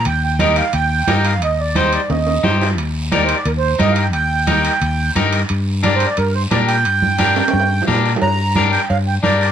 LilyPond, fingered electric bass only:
\new Staff \with { instrumentName = "Fingered electric bass" } { \clef bass \time 4/4 \key g \minor \tempo 4 = 176 ees,2 ees,4 g,4 | ees,2 ees,4 g,4 | ees,2 ees,4 g,4 | ees,2 ees,4 g,4 |
g,2 g,4 bes,4 | g,2 g,4 bes,4 | g,2 g,4 g,4 | }